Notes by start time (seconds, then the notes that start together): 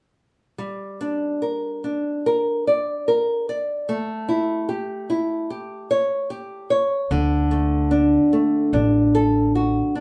0.58 G3
1.01 D4
1.42 A#4
1.84 D4
2.26 A#4
2.67 D5
3.08 A#4
3.49 D5
3.89 A3
4.29 E4
4.69 G4
5.10 E4
5.50 G4
5.91 C#5
6.30 G4
6.70 C#5
7.11 D2 D3
7.51 A3
7.91 D4
8.33 A3
8.73 A1 D4
9.15 A4
9.55 F#4
9.95 D4